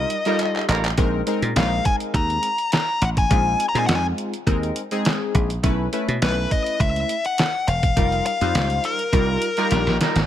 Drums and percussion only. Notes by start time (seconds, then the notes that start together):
0.10 closed hi-hat
0.25 closed hi-hat
0.39 clap, closed hi-hat
0.56 clap
0.69 clap, closed hi-hat
0.84 clap, closed hi-hat
0.98 kick, closed hi-hat
1.27 closed hi-hat
1.42 closed hi-hat
1.56 snare, clap, closed hi-hat
1.85 kick, closed hi-hat
2.00 closed hi-hat
2.14 kick, closed hi-hat
2.30 closed hi-hat
2.43 closed hi-hat
2.58 closed hi-hat
2.72 snare, clap, closed hi-hat
3.02 closed hi-hat
3.17 kick, closed hi-hat
3.31 kick, closed hi-hat
3.60 closed hi-hat
3.75 closed hi-hat
3.89 snare, clap, closed hi-hat
4.18 closed hi-hat
4.34 closed hi-hat
4.47 kick, closed hi-hat
4.63 closed hi-hat
4.76 closed hi-hat
4.91 closed hi-hat
5.05 snare, clap, closed hi-hat
5.35 kick, closed hi-hat
5.50 closed hi-hat
5.64 kick, closed hi-hat
5.93 closed hi-hat
6.09 closed hi-hat
6.22 snare, clap, closed hi-hat
6.51 kick, closed hi-hat
6.66 closed hi-hat
6.80 kick, closed hi-hat
6.96 closed hi-hat
7.09 closed hi-hat
7.25 closed hi-hat
7.38 snare, clap, closed hi-hat
7.68 closed hi-hat
7.83 kick, closed hi-hat
7.97 kick, closed hi-hat
8.12 closed hi-hat
8.26 closed hi-hat
8.41 closed hi-hat
8.55 snare, clap, closed hi-hat
8.70 closed hi-hat
8.84 closed hi-hat
8.99 closed hi-hat
9.13 kick, closed hi-hat
9.42 closed hi-hat
9.57 closed hi-hat
9.71 snare, closed hi-hat
9.87 snare
10.01 snare, closed hi-hat
10.16 snare, closed hi-hat